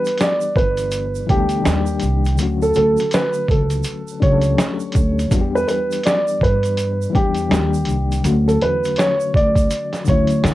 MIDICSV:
0, 0, Header, 1, 5, 480
1, 0, Start_track
1, 0, Tempo, 731707
1, 1565, Time_signature, 4, 2, 24, 8
1, 6914, End_track
2, 0, Start_track
2, 0, Title_t, "Upright piano"
2, 0, Program_c, 0, 0
2, 0, Note_on_c, 0, 71, 74
2, 105, Note_off_c, 0, 71, 0
2, 135, Note_on_c, 0, 74, 75
2, 347, Note_off_c, 0, 74, 0
2, 371, Note_on_c, 0, 71, 68
2, 822, Note_off_c, 0, 71, 0
2, 852, Note_on_c, 0, 67, 77
2, 1542, Note_off_c, 0, 67, 0
2, 1720, Note_on_c, 0, 69, 72
2, 1799, Note_off_c, 0, 69, 0
2, 1811, Note_on_c, 0, 69, 79
2, 2024, Note_off_c, 0, 69, 0
2, 2059, Note_on_c, 0, 71, 80
2, 2269, Note_off_c, 0, 71, 0
2, 2299, Note_on_c, 0, 69, 67
2, 2746, Note_off_c, 0, 69, 0
2, 2773, Note_on_c, 0, 73, 75
2, 3463, Note_off_c, 0, 73, 0
2, 3643, Note_on_c, 0, 71, 86
2, 3716, Note_off_c, 0, 71, 0
2, 3726, Note_on_c, 0, 71, 67
2, 3942, Note_off_c, 0, 71, 0
2, 3973, Note_on_c, 0, 74, 81
2, 4185, Note_off_c, 0, 74, 0
2, 4218, Note_on_c, 0, 71, 70
2, 4665, Note_off_c, 0, 71, 0
2, 4692, Note_on_c, 0, 67, 73
2, 5382, Note_off_c, 0, 67, 0
2, 5561, Note_on_c, 0, 69, 67
2, 5639, Note_off_c, 0, 69, 0
2, 5657, Note_on_c, 0, 71, 70
2, 5891, Note_off_c, 0, 71, 0
2, 5891, Note_on_c, 0, 73, 83
2, 6104, Note_off_c, 0, 73, 0
2, 6138, Note_on_c, 0, 74, 74
2, 6585, Note_off_c, 0, 74, 0
2, 6619, Note_on_c, 0, 73, 78
2, 6914, Note_off_c, 0, 73, 0
2, 6914, End_track
3, 0, Start_track
3, 0, Title_t, "Reed electric piano"
3, 0, Program_c, 1, 4
3, 0, Control_c, 1, 64, 127
3, 0, Note_on_c, 1, 52, 73
3, 0, Note_on_c, 1, 55, 57
3, 0, Note_on_c, 1, 59, 64
3, 0, Note_on_c, 1, 62, 61
3, 0, Note_on_c, 1, 67, 78
3, 291, Note_off_c, 1, 52, 0
3, 297, Note_off_c, 1, 55, 0
3, 301, Note_off_c, 1, 59, 0
3, 307, Note_off_c, 1, 62, 0
3, 312, Note_off_c, 1, 67, 0
3, 832, Note_on_c, 1, 52, 76
3, 843, Note_on_c, 1, 55, 67
3, 850, Note_on_c, 1, 59, 69
3, 861, Note_on_c, 1, 62, 71
3, 872, Note_on_c, 1, 69, 87
3, 1066, Note_on_c, 1, 51, 74
3, 1068, Note_off_c, 1, 55, 0
3, 1076, Note_on_c, 1, 55, 70
3, 1078, Note_off_c, 1, 52, 0
3, 1085, Note_on_c, 1, 58, 65
3, 1088, Note_off_c, 1, 59, 0
3, 1089, Note_off_c, 1, 62, 0
3, 1094, Control_c, 1, 64, 0
3, 1097, Note_on_c, 1, 62, 63
3, 1098, Note_off_c, 1, 69, 0
3, 1105, Note_on_c, 1, 67, 84
3, 1201, Control_c, 1, 64, 127
3, 1482, Note_off_c, 1, 51, 0
3, 1487, Note_off_c, 1, 55, 0
3, 1492, Note_off_c, 1, 58, 0
3, 1498, Note_off_c, 1, 62, 0
3, 1502, Note_off_c, 1, 67, 0
3, 1553, Note_on_c, 1, 50, 71
3, 1563, Note_on_c, 1, 54, 66
3, 1571, Note_on_c, 1, 57, 61
3, 1574, Control_c, 1, 64, 0
3, 1583, Note_on_c, 1, 61, 62
3, 1593, Note_on_c, 1, 66, 77
3, 1679, Control_c, 1, 64, 127
3, 2212, Note_off_c, 1, 50, 0
3, 2218, Note_off_c, 1, 54, 0
3, 2222, Note_off_c, 1, 57, 0
3, 2228, Note_off_c, 1, 61, 0
3, 2233, Note_off_c, 1, 66, 0
3, 2755, Note_on_c, 1, 62, 72
3, 2766, Note_on_c, 1, 54, 70
3, 2775, Note_on_c, 1, 57, 67
3, 2785, Note_on_c, 1, 61, 68
3, 2795, Note_on_c, 1, 67, 64
3, 2833, Note_off_c, 1, 67, 0
3, 2837, Note_on_c, 1, 69, 81
3, 3236, Note_off_c, 1, 62, 0
3, 3241, Note_off_c, 1, 54, 0
3, 3246, Note_off_c, 1, 57, 0
3, 3251, Note_off_c, 1, 61, 0
3, 3277, Note_off_c, 1, 69, 0
3, 3464, Note_on_c, 1, 52, 71
3, 3475, Note_on_c, 1, 55, 61
3, 3484, Note_on_c, 1, 59, 62
3, 3493, Control_c, 1, 64, 0
3, 3494, Note_on_c, 1, 62, 62
3, 3504, Note_on_c, 1, 66, 63
3, 3548, Note_off_c, 1, 66, 0
3, 3549, Note_on_c, 1, 67, 80
3, 3598, Control_c, 1, 64, 127
3, 4128, Note_off_c, 1, 52, 0
3, 4134, Note_off_c, 1, 55, 0
3, 4138, Note_off_c, 1, 59, 0
3, 4143, Note_off_c, 1, 62, 0
3, 4171, Note_off_c, 1, 67, 0
3, 4657, Note_on_c, 1, 52, 76
3, 4666, Note_on_c, 1, 55, 62
3, 4676, Note_on_c, 1, 59, 60
3, 4687, Note_on_c, 1, 62, 66
3, 4697, Note_on_c, 1, 67, 76
3, 4905, Note_on_c, 1, 51, 67
3, 4908, Note_off_c, 1, 55, 0
3, 4911, Note_off_c, 1, 52, 0
3, 4916, Note_on_c, 1, 55, 65
3, 4921, Note_off_c, 1, 59, 0
3, 4926, Note_off_c, 1, 62, 0
3, 4926, Note_on_c, 1, 58, 70
3, 4931, Note_off_c, 1, 67, 0
3, 4932, Control_c, 1, 64, 0
3, 4934, Note_on_c, 1, 62, 59
3, 4946, Note_on_c, 1, 66, 59
3, 4987, Note_on_c, 1, 67, 73
3, 4988, Note_off_c, 1, 66, 0
3, 5065, Control_c, 1, 64, 127
3, 5322, Note_off_c, 1, 51, 0
3, 5328, Note_off_c, 1, 55, 0
3, 5333, Note_off_c, 1, 58, 0
3, 5337, Note_off_c, 1, 62, 0
3, 5363, Note_off_c, 1, 67, 0
3, 5381, Note_on_c, 1, 50, 71
3, 5392, Note_on_c, 1, 54, 59
3, 5400, Note_on_c, 1, 57, 67
3, 5412, Note_on_c, 1, 61, 64
3, 5414, Control_c, 1, 64, 0
3, 5423, Note_on_c, 1, 66, 78
3, 5510, Control_c, 1, 64, 127
3, 6047, Note_off_c, 1, 50, 0
3, 6052, Note_off_c, 1, 54, 0
3, 6056, Note_off_c, 1, 57, 0
3, 6062, Note_off_c, 1, 61, 0
3, 6067, Note_off_c, 1, 66, 0
3, 6590, Note_on_c, 1, 50, 75
3, 6602, Note_on_c, 1, 54, 68
3, 6611, Note_on_c, 1, 57, 64
3, 6623, Note_on_c, 1, 61, 65
3, 6634, Note_on_c, 1, 64, 82
3, 6914, Note_off_c, 1, 50, 0
3, 6914, Note_off_c, 1, 54, 0
3, 6914, Note_off_c, 1, 57, 0
3, 6914, Note_off_c, 1, 61, 0
3, 6914, Note_off_c, 1, 64, 0
3, 6914, End_track
4, 0, Start_track
4, 0, Title_t, "Upright bass"
4, 0, Program_c, 2, 32
4, 369, Note_on_c, 2, 31, 82
4, 777, Note_off_c, 2, 31, 0
4, 850, Note_on_c, 2, 38, 88
4, 1053, Note_off_c, 2, 38, 0
4, 1088, Note_on_c, 2, 39, 87
4, 1292, Note_off_c, 2, 39, 0
4, 1331, Note_on_c, 2, 36, 82
4, 1568, Note_off_c, 2, 36, 0
4, 1568, Note_on_c, 2, 38, 106
4, 1772, Note_off_c, 2, 38, 0
4, 1810, Note_on_c, 2, 38, 92
4, 1935, Note_off_c, 2, 38, 0
4, 2288, Note_on_c, 2, 37, 84
4, 2492, Note_off_c, 2, 37, 0
4, 2771, Note_on_c, 2, 37, 87
4, 2973, Note_off_c, 2, 37, 0
4, 3250, Note_on_c, 2, 38, 90
4, 3453, Note_off_c, 2, 38, 0
4, 3488, Note_on_c, 2, 40, 104
4, 3692, Note_off_c, 2, 40, 0
4, 4210, Note_on_c, 2, 43, 88
4, 4618, Note_off_c, 2, 43, 0
4, 4693, Note_on_c, 2, 40, 81
4, 4895, Note_off_c, 2, 40, 0
4, 4931, Note_on_c, 2, 39, 92
4, 5170, Note_off_c, 2, 39, 0
4, 5170, Note_on_c, 2, 36, 81
4, 5373, Note_off_c, 2, 36, 0
4, 5410, Note_on_c, 2, 38, 105
4, 5613, Note_off_c, 2, 38, 0
4, 5652, Note_on_c, 2, 40, 87
4, 5776, Note_off_c, 2, 40, 0
4, 6131, Note_on_c, 2, 38, 77
4, 6333, Note_off_c, 2, 38, 0
4, 6614, Note_on_c, 2, 38, 96
4, 6815, Note_off_c, 2, 38, 0
4, 6851, Note_on_c, 2, 50, 95
4, 6914, Note_off_c, 2, 50, 0
4, 6914, End_track
5, 0, Start_track
5, 0, Title_t, "Drums"
5, 33, Note_on_c, 9, 82, 47
5, 45, Note_on_c, 9, 42, 54
5, 99, Note_off_c, 9, 82, 0
5, 111, Note_off_c, 9, 42, 0
5, 115, Note_on_c, 9, 42, 66
5, 133, Note_on_c, 9, 82, 57
5, 136, Note_on_c, 9, 38, 114
5, 181, Note_off_c, 9, 42, 0
5, 198, Note_off_c, 9, 82, 0
5, 201, Note_off_c, 9, 38, 0
5, 268, Note_on_c, 9, 82, 50
5, 334, Note_off_c, 9, 82, 0
5, 365, Note_on_c, 9, 36, 91
5, 383, Note_on_c, 9, 42, 59
5, 431, Note_off_c, 9, 36, 0
5, 449, Note_off_c, 9, 42, 0
5, 507, Note_on_c, 9, 42, 41
5, 509, Note_on_c, 9, 82, 50
5, 572, Note_off_c, 9, 42, 0
5, 574, Note_off_c, 9, 82, 0
5, 600, Note_on_c, 9, 82, 64
5, 601, Note_on_c, 9, 42, 79
5, 665, Note_off_c, 9, 82, 0
5, 667, Note_off_c, 9, 42, 0
5, 755, Note_on_c, 9, 82, 43
5, 821, Note_off_c, 9, 82, 0
5, 848, Note_on_c, 9, 36, 88
5, 848, Note_on_c, 9, 42, 61
5, 913, Note_off_c, 9, 36, 0
5, 914, Note_off_c, 9, 42, 0
5, 977, Note_on_c, 9, 42, 49
5, 981, Note_on_c, 9, 82, 45
5, 1042, Note_off_c, 9, 42, 0
5, 1047, Note_off_c, 9, 82, 0
5, 1085, Note_on_c, 9, 38, 109
5, 1088, Note_on_c, 9, 82, 66
5, 1090, Note_on_c, 9, 42, 73
5, 1151, Note_off_c, 9, 38, 0
5, 1154, Note_off_c, 9, 82, 0
5, 1156, Note_off_c, 9, 42, 0
5, 1222, Note_on_c, 9, 82, 50
5, 1288, Note_off_c, 9, 82, 0
5, 1309, Note_on_c, 9, 42, 58
5, 1325, Note_on_c, 9, 82, 52
5, 1375, Note_off_c, 9, 42, 0
5, 1390, Note_off_c, 9, 82, 0
5, 1476, Note_on_c, 9, 82, 46
5, 1485, Note_on_c, 9, 42, 46
5, 1542, Note_off_c, 9, 82, 0
5, 1551, Note_off_c, 9, 42, 0
5, 1560, Note_on_c, 9, 82, 63
5, 1567, Note_on_c, 9, 42, 82
5, 1625, Note_off_c, 9, 82, 0
5, 1632, Note_off_c, 9, 42, 0
5, 1719, Note_on_c, 9, 82, 47
5, 1784, Note_off_c, 9, 82, 0
5, 1796, Note_on_c, 9, 82, 45
5, 1810, Note_on_c, 9, 42, 66
5, 1862, Note_off_c, 9, 82, 0
5, 1875, Note_off_c, 9, 42, 0
5, 1949, Note_on_c, 9, 82, 50
5, 1968, Note_on_c, 9, 42, 53
5, 2015, Note_off_c, 9, 82, 0
5, 2033, Note_off_c, 9, 42, 0
5, 2041, Note_on_c, 9, 42, 70
5, 2053, Note_on_c, 9, 82, 58
5, 2061, Note_on_c, 9, 38, 112
5, 2106, Note_off_c, 9, 42, 0
5, 2119, Note_off_c, 9, 82, 0
5, 2127, Note_off_c, 9, 38, 0
5, 2187, Note_on_c, 9, 82, 49
5, 2252, Note_off_c, 9, 82, 0
5, 2285, Note_on_c, 9, 36, 89
5, 2303, Note_on_c, 9, 42, 60
5, 2351, Note_off_c, 9, 36, 0
5, 2368, Note_off_c, 9, 42, 0
5, 2427, Note_on_c, 9, 42, 42
5, 2429, Note_on_c, 9, 82, 53
5, 2493, Note_off_c, 9, 42, 0
5, 2495, Note_off_c, 9, 82, 0
5, 2515, Note_on_c, 9, 82, 66
5, 2522, Note_on_c, 9, 42, 83
5, 2581, Note_off_c, 9, 82, 0
5, 2588, Note_off_c, 9, 42, 0
5, 2676, Note_on_c, 9, 82, 42
5, 2741, Note_off_c, 9, 82, 0
5, 2768, Note_on_c, 9, 36, 83
5, 2770, Note_on_c, 9, 42, 64
5, 2834, Note_off_c, 9, 36, 0
5, 2835, Note_off_c, 9, 42, 0
5, 2896, Note_on_c, 9, 42, 50
5, 2904, Note_on_c, 9, 82, 46
5, 2961, Note_off_c, 9, 42, 0
5, 2969, Note_off_c, 9, 82, 0
5, 3007, Note_on_c, 9, 38, 114
5, 3012, Note_on_c, 9, 42, 71
5, 3013, Note_on_c, 9, 82, 69
5, 3072, Note_off_c, 9, 38, 0
5, 3077, Note_off_c, 9, 42, 0
5, 3079, Note_off_c, 9, 82, 0
5, 3147, Note_on_c, 9, 82, 48
5, 3213, Note_off_c, 9, 82, 0
5, 3228, Note_on_c, 9, 42, 60
5, 3247, Note_on_c, 9, 36, 92
5, 3249, Note_on_c, 9, 82, 54
5, 3293, Note_off_c, 9, 42, 0
5, 3313, Note_off_c, 9, 36, 0
5, 3315, Note_off_c, 9, 82, 0
5, 3405, Note_on_c, 9, 42, 48
5, 3405, Note_on_c, 9, 82, 45
5, 3471, Note_off_c, 9, 42, 0
5, 3471, Note_off_c, 9, 82, 0
5, 3484, Note_on_c, 9, 36, 117
5, 3486, Note_on_c, 9, 82, 64
5, 3488, Note_on_c, 9, 42, 81
5, 3550, Note_off_c, 9, 36, 0
5, 3551, Note_off_c, 9, 82, 0
5, 3554, Note_off_c, 9, 42, 0
5, 3651, Note_on_c, 9, 82, 47
5, 3717, Note_off_c, 9, 82, 0
5, 3728, Note_on_c, 9, 82, 43
5, 3729, Note_on_c, 9, 42, 64
5, 3794, Note_off_c, 9, 82, 0
5, 3795, Note_off_c, 9, 42, 0
5, 3878, Note_on_c, 9, 82, 49
5, 3887, Note_on_c, 9, 42, 54
5, 3944, Note_off_c, 9, 82, 0
5, 3953, Note_off_c, 9, 42, 0
5, 3959, Note_on_c, 9, 42, 69
5, 3979, Note_on_c, 9, 38, 112
5, 3980, Note_on_c, 9, 82, 59
5, 4024, Note_off_c, 9, 42, 0
5, 4045, Note_off_c, 9, 38, 0
5, 4046, Note_off_c, 9, 82, 0
5, 4116, Note_on_c, 9, 82, 47
5, 4182, Note_off_c, 9, 82, 0
5, 4206, Note_on_c, 9, 36, 90
5, 4225, Note_on_c, 9, 42, 58
5, 4272, Note_off_c, 9, 36, 0
5, 4291, Note_off_c, 9, 42, 0
5, 4350, Note_on_c, 9, 42, 44
5, 4362, Note_on_c, 9, 82, 54
5, 4416, Note_off_c, 9, 42, 0
5, 4427, Note_off_c, 9, 82, 0
5, 4443, Note_on_c, 9, 42, 79
5, 4449, Note_on_c, 9, 82, 64
5, 4509, Note_off_c, 9, 42, 0
5, 4515, Note_off_c, 9, 82, 0
5, 4604, Note_on_c, 9, 82, 43
5, 4670, Note_off_c, 9, 82, 0
5, 4690, Note_on_c, 9, 36, 86
5, 4692, Note_on_c, 9, 42, 61
5, 4755, Note_off_c, 9, 36, 0
5, 4758, Note_off_c, 9, 42, 0
5, 4819, Note_on_c, 9, 42, 47
5, 4833, Note_on_c, 9, 82, 44
5, 4884, Note_off_c, 9, 42, 0
5, 4898, Note_off_c, 9, 82, 0
5, 4928, Note_on_c, 9, 38, 104
5, 4933, Note_on_c, 9, 42, 77
5, 4942, Note_on_c, 9, 82, 65
5, 4993, Note_off_c, 9, 38, 0
5, 4998, Note_off_c, 9, 42, 0
5, 5007, Note_off_c, 9, 82, 0
5, 5075, Note_on_c, 9, 82, 49
5, 5141, Note_off_c, 9, 82, 0
5, 5151, Note_on_c, 9, 42, 58
5, 5176, Note_on_c, 9, 82, 50
5, 5217, Note_off_c, 9, 42, 0
5, 5241, Note_off_c, 9, 82, 0
5, 5327, Note_on_c, 9, 42, 44
5, 5327, Note_on_c, 9, 82, 46
5, 5392, Note_off_c, 9, 42, 0
5, 5392, Note_off_c, 9, 82, 0
5, 5407, Note_on_c, 9, 42, 86
5, 5411, Note_on_c, 9, 82, 64
5, 5473, Note_off_c, 9, 42, 0
5, 5476, Note_off_c, 9, 82, 0
5, 5568, Note_on_c, 9, 42, 34
5, 5569, Note_on_c, 9, 82, 47
5, 5633, Note_off_c, 9, 42, 0
5, 5634, Note_off_c, 9, 82, 0
5, 5651, Note_on_c, 9, 42, 67
5, 5717, Note_off_c, 9, 42, 0
5, 5800, Note_on_c, 9, 82, 48
5, 5808, Note_on_c, 9, 42, 53
5, 5865, Note_off_c, 9, 82, 0
5, 5874, Note_off_c, 9, 42, 0
5, 5879, Note_on_c, 9, 42, 70
5, 5899, Note_on_c, 9, 38, 112
5, 5901, Note_on_c, 9, 82, 58
5, 5944, Note_off_c, 9, 42, 0
5, 5965, Note_off_c, 9, 38, 0
5, 5967, Note_off_c, 9, 82, 0
5, 6037, Note_on_c, 9, 82, 50
5, 6103, Note_off_c, 9, 82, 0
5, 6128, Note_on_c, 9, 36, 92
5, 6146, Note_on_c, 9, 42, 58
5, 6194, Note_off_c, 9, 36, 0
5, 6212, Note_off_c, 9, 42, 0
5, 6268, Note_on_c, 9, 36, 82
5, 6272, Note_on_c, 9, 42, 42
5, 6278, Note_on_c, 9, 82, 51
5, 6333, Note_off_c, 9, 36, 0
5, 6337, Note_off_c, 9, 42, 0
5, 6344, Note_off_c, 9, 82, 0
5, 6367, Note_on_c, 9, 42, 81
5, 6368, Note_on_c, 9, 82, 66
5, 6433, Note_off_c, 9, 42, 0
5, 6433, Note_off_c, 9, 82, 0
5, 6512, Note_on_c, 9, 38, 33
5, 6513, Note_on_c, 9, 42, 32
5, 6522, Note_on_c, 9, 82, 42
5, 6578, Note_off_c, 9, 38, 0
5, 6579, Note_off_c, 9, 42, 0
5, 6588, Note_off_c, 9, 82, 0
5, 6595, Note_on_c, 9, 82, 50
5, 6611, Note_on_c, 9, 36, 84
5, 6613, Note_on_c, 9, 42, 61
5, 6661, Note_off_c, 9, 82, 0
5, 6676, Note_off_c, 9, 36, 0
5, 6679, Note_off_c, 9, 42, 0
5, 6739, Note_on_c, 9, 42, 49
5, 6756, Note_on_c, 9, 82, 44
5, 6804, Note_off_c, 9, 42, 0
5, 6821, Note_off_c, 9, 82, 0
5, 6847, Note_on_c, 9, 38, 109
5, 6852, Note_on_c, 9, 42, 70
5, 6863, Note_on_c, 9, 82, 64
5, 6912, Note_off_c, 9, 38, 0
5, 6914, Note_off_c, 9, 42, 0
5, 6914, Note_off_c, 9, 82, 0
5, 6914, End_track
0, 0, End_of_file